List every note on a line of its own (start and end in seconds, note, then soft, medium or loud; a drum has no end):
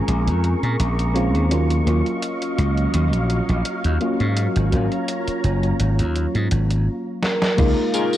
0.00 1.14 G#3 medium
0.00 1.15 C4 medium
0.00 1.15 C#4 medium
0.00 1.15 F4 medium
0.00 1.48 G#4 medium
0.00 1.48 A#4 medium
0.00 1.47 A#5 medium
0.00 4.33 C#6 medium
0.08 0.29 A#1 medium
0.08 closed hi-hat medium
0.27 0.54 F2 medium
0.27 closed hi-hat soft
0.44 closed hi-hat soft
0.63 0.76 A#2 medium
0.63 closed hi-hat soft
0.80 1.35 A#1 medium
0.80 closed hi-hat medium
0.99 closed hi-hat soft
1.14 1.39 G#3 medium
1.14 1.39 C4 medium
1.14 1.39 C#4 medium
1.14 1.39 F4 medium
1.14 closed hi-hat soft
1.35 1.80 D#2 medium
1.35 closed hi-hat soft
1.50 1.82 F#3 medium
1.50 6.83 F#3 medium
1.50 1.83 A#3 medium
1.50 1.83 C#4 medium
1.50 1.83 F4 medium
1.50 4.34 D#5 medium
1.50 6.83 F5 medium
1.50 closed hi-hat medium
1.70 closed hi-hat soft
1.85 2.01 D#2 medium
1.85 3.96 F#3 medium
1.85 3.97 A#3 medium
1.85 3.97 C#4 medium
1.85 3.98 F4 medium
1.85 closed hi-hat soft
2.06 closed hi-hat soft
2.22 closed hi-hat medium
2.42 closed hi-hat soft
2.58 2.86 C#2 medium
2.58 closed hi-hat soft
2.77 closed hi-hat soft
2.94 3.13 D#2 medium
2.94 closed hi-hat medium
3.13 3.40 A#1 medium
3.13 closed hi-hat soft
3.30 closed hi-hat soft
3.49 3.61 A#1 medium
3.49 closed hi-hat soft
3.65 closed hi-hat medium
3.84 3.97 D#2 medium
3.84 closed hi-hat soft
4.00 4.68 F#3 medium
4.00 4.68 A#3 medium
4.00 4.69 C#4 medium
4.00 4.69 F4 medium
4.00 closed hi-hat soft
4.20 4.47 G#2 medium
4.20 closed hi-hat soft
4.37 6.84 C#5 medium
4.37 6.84 A#5 medium
4.37 closed hi-hat medium
4.56 4.69 G#1 medium
4.56 closed hi-hat soft
4.71 4.87 G#1 medium
4.71 6.82 F#3 medium
4.71 6.83 A#3 medium
4.71 6.83 C#4 medium
4.71 6.84 F4 medium
4.71 closed hi-hat medium
4.92 closed hi-hat soft
5.08 closed hi-hat medium
5.27 muted slap bass stroke soft
5.27 closed hi-hat medium
5.44 5.72 F#1 medium
5.44 closed hi-hat medium
5.63 closed hi-hat soft
5.79 6.01 G#1 medium
5.79 closed hi-hat medium
5.99 6.25 D#2 medium
5.99 closed hi-hat soft
6.15 closed hi-hat soft
6.35 6.47 G#2 medium
6.35 closed hi-hat soft
6.51 6.87 G#1 medium
6.51 closed hi-hat medium
6.70 closed hi-hat soft
7.22 7.56 A#4 loud
7.22 snare medium
7.42 snare medium
7.57 7.73 C#2 loud
7.57 8.17 C#3 medium
7.57 8.17 G#3 medium
7.57 8.17 A#3 medium
7.57 8.17 D#4 medium
7.57 8.17 F4 loud
7.57 7.91 A#4 loud
7.57 kick loud
7.57 closed hi-hat medium
7.57 crash loud
7.57 tambourine soft
7.93 8.13 C#4 medium
7.93 8.13 D#4 medium
7.93 8.13 F4 medium
7.93 8.17 G#4 loud
7.93 8.13 A#4 medium
7.93 closed hi-hat medium
7.93 tambourine medium
8.13 tambourine soft